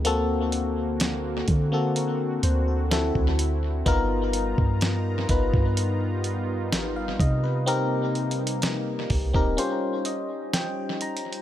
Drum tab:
HH |x-----x-----x-----x-----x-----x-----x-----x-----|x-----x-----x-----x-----x-----x-----x-----x-----|x-----x-x-x-x-----o-----x-----x-----x-----x-x-x-|
SD |------------o-----------------------o-----------|------------o-----------------------o-----------|------------o-----------------------o-----------|
BD |------------------o--------------------o--------|o--------o--------o--o--------------------o-----|------------------o--o--------------------------|